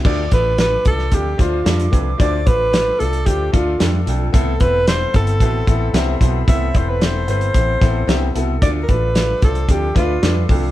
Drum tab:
CC |x---------------|----------------|----------------|----------------|
HH |--x-x-x-x-x-xxx-|x-x-x-xxx-x-x-x-|x-x-x-xxx-x-x-x-|x-x-x-xxx-x-x-x-|
SD |----o--o--o-o---|----o-------o---|----o-o-----o---|----o-----o-o---|
BD |o-o---o-o-o---o-|o-o-----o-o-----|o-o---o-o-o---o-|o-o-----o-o-----|

CC |----------------|
HH |x-x-x-xxx-x-x-o-|
SD |----o-o---o-o---|
BD |o-o---o-o-o---o-|